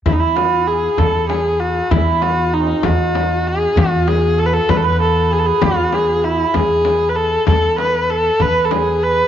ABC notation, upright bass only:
X:1
M:6/8
L:1/8
Q:3/8=65
K:none
V:1 name="Upright bass" clef=bass
E,,3 E,,3 | E,,3 E,,3 | E,,3 E,,3 | E,,3 E,,3 |
E,,3 E,,3 |]